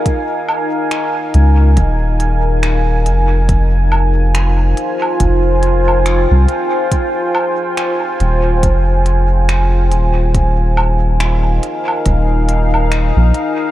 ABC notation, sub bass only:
X:1
M:4/4
L:1/16
Q:"Swing 16ths" 1/4=70
K:Fm
V:1 name="Sub bass" clef=bass
z6 D,,2 E,,,6 F,,,2- | F,,,6 z2 F,,,4- F,,, C,, z2 | z6 E,,,2 F,,,6 E,,,2- | E,,,6 z2 E,,,4- E,,, B,,, z2 |]